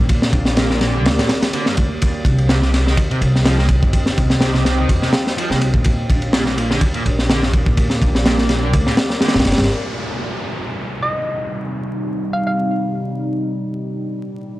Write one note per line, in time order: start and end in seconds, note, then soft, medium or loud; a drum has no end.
0.00 0.30 A#2 medium
0.00 1.97 A#3 medium
0.00 9.65 G4 medium
0.00 1.98 D5 medium
0.09 kick loud
0.09 ride medium
0.22 snare medium
0.33 1.05 A#1 loud
0.33 kick loud
0.33 ride medium
0.45 snare medium
0.57 0.67 A#2 medium
0.57 snare loud
0.57 ride medium
0.70 0.78 A#2 loud
0.70 snare soft
0.81 0.94 A#2 medium
0.81 snare medium
0.81 ride medium
0.94 1.05 D3 medium
1.05 1.16 D2 loud
1.05 snare loud
1.05 ride medium
1.18 1.26 A#2 medium
1.18 snare loud
1.18 ride medium
1.29 snare loud
1.29 ride medium
1.42 snare medium
1.42 ride medium
1.53 1.65 D3 medium
1.53 ride medium
1.66 1.74 G2 loud
1.66 snare soft
1.77 1.88 D2 medium
1.77 kick loud
1.77 ride medium
2.01 5.81 C4 medium
2.01 5.81 D#5 medium
2.01 kick loud
2.01 ride medium
2.25 2.94 C2 medium
2.25 kick loud
2.25 ride medium
2.38 ride soft
2.49 2.59 C3 medium
2.49 snare loud
2.49 ride medium
2.62 2.70 C3 loud
2.62 snare soft
2.73 2.86 C3 medium
2.73 snare soft
2.73 ride medium
2.86 2.97 D#3 medium
2.86 snare soft
2.97 kick loud
2.97 ride medium
3.10 3.18 C3 medium
3.10 ride soft
3.21 3.78 C2 loud
3.21 ride medium
3.35 snare soft
3.45 3.57 F3 medium
3.45 snare loud
3.45 ride medium
3.58 3.66 A#2 loud
3.58 snare medium
3.69 kick loud
3.69 ride medium
3.83 4.14 G1 medium
3.83 kick loud
3.93 kick loud
3.93 ride medium
4.06 snare medium
4.18 4.89 C2 loud
4.18 kick loud
4.18 ride medium
4.30 snare medium
4.41 4.50 C3 medium
4.41 snare loud
4.41 ride medium
4.53 4.62 C3 loud
4.53 snare soft
4.65 4.77 C3 medium
4.65 snare medium
4.65 ride medium
4.78 4.88 D#3 medium
4.89 5.00 F2 medium
4.89 kick loud
4.89 ride medium
5.02 5.10 C3 medium
5.02 snare soft
5.13 snare loud
5.13 ride medium
5.27 snare medium
5.37 5.49 F3 medium
5.37 ride medium
5.49 5.69 C2 medium
5.49 5.58 A#2 loud
5.49 snare soft
5.61 ride medium
5.74 6.06 A#2 medium
5.74 kick medium
5.84 9.66 A#3 medium
5.84 9.66 D5 medium
5.84 kick loud
5.84 ride medium
6.10 6.78 A#1 loud
6.10 kick medium
6.10 ride medium
6.22 ride soft
6.33 6.42 A#2 medium
6.33 snare loud
6.33 ride medium
6.46 6.54 A#2 loud
6.46 snare soft
6.57 6.69 A#2 medium
6.57 ride medium
6.70 6.81 D3 medium
6.70 snare soft
6.81 kick loud
6.81 ride medium
6.94 7.02 A#2 medium
6.94 ride soft
7.05 7.62 A#1 loud
7.05 ride medium
7.19 snare soft
7.29 7.41 D3 medium
7.29 snare loud
7.29 ride medium
7.42 7.50 G2 loud
7.42 snare medium
7.53 kick loud
7.53 ride medium
7.66 7.98 A#2 loud
7.66 kick loud
7.77 kick loud
7.77 ride medium
7.90 snare soft
8.02 8.74 A#1 loud
8.02 kick medium
8.02 ride medium
8.15 snare medium
8.25 8.34 A#2 medium
8.25 snare loud
8.25 ride loud
8.38 8.46 A#2 loud
8.38 snare soft
8.49 8.62 A#2 medium
8.49 snare medium
8.49 ride medium
8.62 8.73 D3 medium
8.73 8.84 D2 medium
8.73 kick loud
8.73 ride medium
8.86 8.94 A#2 medium
8.86 snare soft
8.97 snare loud
8.97 ride medium
9.10 snare medium
9.21 9.33 D3 medium
9.21 snare medium
9.21 ride medium
9.28 snare medium
9.28 ride medium
9.34 9.43 A#1 loud
9.34 9.42 G2 loud
9.34 snare medium
9.34 ride medium
9.40 snare medium
9.40 ride medium
9.45 9.56 G1 medium
9.45 snare medium
9.45 ride medium
9.52 snare loud
9.52 ride medium
9.58 9.67 G1 medium
9.58 snare medium
9.58 ride medium
9.64 snare medium
9.64 ride medium
9.69 13.49 C3 medium
9.69 13.50 G3 medium
9.69 13.50 D#4 medium
9.69 downlifter medium
11.02 11.13 D#5 medium
12.33 12.42 F5 medium
12.47 12.54 F5 medium
13.53 14.60 A#2 medium
13.53 14.60 G3 medium
13.53 14.60 D4 medium